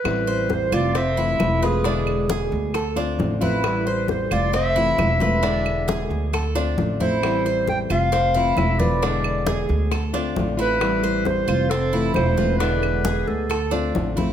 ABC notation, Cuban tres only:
X:1
M:4/4
L:1/8
Q:1/4=134
K:Am
V:1 name="Cuban tres"
z c2 F C E2 B | D2 ^G2 A D2 E- | E c2 F C E2 B | D2 ^G2 A D2 E- |
E c2 F C E2 B | D2 ^G2 A D2 E- | E c2 F C E2 B | D2 ^G2 A D2 E |]